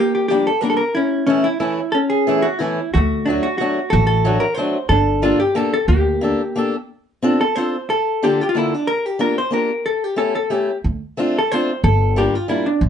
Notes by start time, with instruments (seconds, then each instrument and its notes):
Already playing: hollow-body jazz guitar G4
0.00 hollow-body jazz guitar A#3
0.15 hollow-body jazz guitar G4
0.28 steel-string acoustic guitar F3 G3 A#3 D4, hollow-body jazz guitar G4
0.47 hollow-body jazz guitar A4
0.61 steel-string acoustic guitar F3 G3 A#3 D4, hollow-body jazz guitar A#4
0.70 hollow-body jazz guitar A4
0.77 hollow-body jazz guitar A#4
0.95 hollow-body jazz guitar C#4 E4
1.27 steel-string acoustic guitar E3 A3 C#4 E4, hollow-body jazz guitar C#4
1.44 hollow-body jazz guitar E4
1.60 steel-string acoustic guitar E3 A3 C#4 E4, hollow-body jazz guitar E4
1.92 hollow-body jazz guitar C#4 A4
2.10 hollow-body jazz guitar G#4
2.27 steel-string acoustic guitar E3 A3 C#4 E4
2.42 hollow-body jazz guitar F#4
2.59 steel-string acoustic guitar E3 A3 C#4 E4, hollow-body jazz guitar E4
2.94 upright bass D2, hollow-body jazz guitar A3 F#4
3.26 steel-string acoustic guitar F#3 A3 D4, hollow-body jazz guitar D4
3.30 steel-string acoustic guitar F#4
3.43 hollow-body jazz guitar F#4
3.58 steel-string acoustic guitar F#3 A3 D4 F#4, hollow-body jazz guitar F#4
3.90 upright bass A1, hollow-body jazz guitar F#4 A4
4.07 hollow-body jazz guitar A4
4.25 steel-string acoustic guitar F#3 A3 D4 F#4
4.40 hollow-body jazz guitar A#4
4.54 steel-string acoustic guitar F#3 A3, hollow-body jazz guitar C5
4.59 steel-string acoustic guitar D4 F#4
4.89 upright bass G1, hollow-body jazz guitar D4 A4
5.22 steel-string acoustic guitar A#3 D4 G4 A4, hollow-body jazz guitar F4
5.40 hollow-body jazz guitar G4
5.55 steel-string acoustic guitar A#3 D4 G4 A4, hollow-body jazz guitar A4
5.74 hollow-body jazz guitar A4
5.88 upright bass D2, hollow-body jazz guitar A#3 G4
6.21 steel-string acoustic guitar A#3 D4 G4 A4
6.56 steel-string acoustic guitar A#3 D4 G4 A4
7.22 steel-string acoustic guitar C4 D4 F4 A4
7.41 hollow-body jazz guitar A4
7.55 steel-string acoustic guitar C4 D4 F4 A4, hollow-body jazz guitar C5
7.90 hollow-body jazz guitar A4
8.23 steel-string acoustic guitar D3 A#3 D4 F4 A4, hollow-body jazz guitar G4
8.41 hollow-body jazz guitar F4 G4
8.49 hollow-body jazz guitar F4
8.55 steel-string acoustic guitar D3 A#3 D4 F4 A4, hollow-body jazz guitar E4
8.74 hollow-body jazz guitar D4
8.87 hollow-body jazz guitar A#4
9.06 hollow-body jazz guitar G4
9.19 steel-string acoustic guitar A#3 D4 F4 G4, hollow-body jazz guitar A#4
9.38 hollow-body jazz guitar C5
9.51 steel-string acoustic guitar A#3 D4 F4 G4, hollow-body jazz guitar A#4
9.86 hollow-body jazz guitar A4
10.04 hollow-body jazz guitar G4
10.16 steel-string acoustic guitar A3 C#4 E4 G4, hollow-body jazz guitar A4
10.35 hollow-body jazz guitar A4
10.50 steel-string acoustic guitar A3 C#4 E4 G4, hollow-body jazz guitar G4
10.84 upright bass D2
11.17 steel-string acoustic guitar A3 C4 D4 F4
11.38 hollow-body jazz guitar A4
11.52 steel-string acoustic guitar A3 C4 D4 F4, hollow-body jazz guitar C5
11.84 upright bass G1, hollow-body jazz guitar A4
12.16 steel-string acoustic guitar G3 A#3 D4 F4, hollow-body jazz guitar G4
12.35 hollow-body jazz guitar F4
12.48 steel-string acoustic guitar G3 A#3 D4 F4, hollow-body jazz guitar E4
12.66 hollow-body jazz guitar D4
12.81 upright bass A1